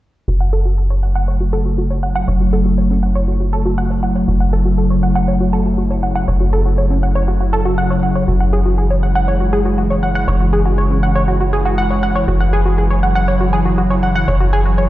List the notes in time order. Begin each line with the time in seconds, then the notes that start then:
0.28 F#1 C#3 F#3 A3 E4 F#4
0.40 F#5
0.53 A4
0.65 F#4
0.78 A4
0.90 C#5
1.03 F#5
1.15 F#5
1.28 C#5
1.40 F#4
1.53 A4
1.65 F#4
1.78 F#4
1.90 C#5
2.03 F#5
2.15 F#5
2.28 F#1 C#5
2.40 F#4
2.53 A4
2.65 F#4
2.78 C#5
2.90 C#4
3.03 F#5
3.15 C#5
3.28 F#4
3.40 F#4
3.53 A4
3.65 F#4
3.78 F#5
3.90 C#5
4.03 F#5
4.15 C#5
4.28 F#1 F#4
4.40 F#5
4.53 A4
4.65 F#4
4.78 A4
4.90 C#5
5.03 F#5
5.15 F#5
5.28 C#5
5.40 F#4
5.53 A4
5.65 F#4
5.78 F#4
5.90 C#5
6.03 F#5
6.15 F#5
6.28 F#1 C#5
6.40 F#4
6.53 A4
6.65 F#4
6.78 C#5
6.90 C#4
7.03 F#5
7.15 C#5
7.28 F#4
7.40 F#4
7.53 A4
7.65 F#4
7.78 F#5
7.90 C#5
8.03 F#5
8.15 C#5
8.28 F#1 E3 G#3 F#4
8.40 F#5
8.53 G#4
8.65 F#4
8.78 G#4
8.90 C#5
9.03 F#5
9.15 F#5
9.28 C#5
9.40 F#4
9.53 G#4
9.65 F#4
9.78 F#4
9.90 C#5
10.03 F#5
10.15 F#5
10.28 F#1 C#5
10.40 F#4
10.53 G#4
10.65 F#4
10.78 C#5
10.90 C#4
11.03 F#5
11.15 C#5
11.28 F#4
11.40 F#4
11.53 G#4
11.65 F#4
11.78 F#5
11.90 C#5
12.03 F#5
12.15 C#5
12.28 F#1 F#3 F#4
12.40 F#5
12.53 G#4
12.65 F#4
12.78 G#4
12.90 C#5
13.03 F#5
13.15 F#5
13.28 C#5
13.40 F#4
13.53 G#4
13.65 F#4
13.78 F#4
13.90 C#5
14.03 F#5
14.15 F#5
14.28 F#1 C#5
14.40 F#4
14.53 G#4
14.65 F#4
14.78 C#5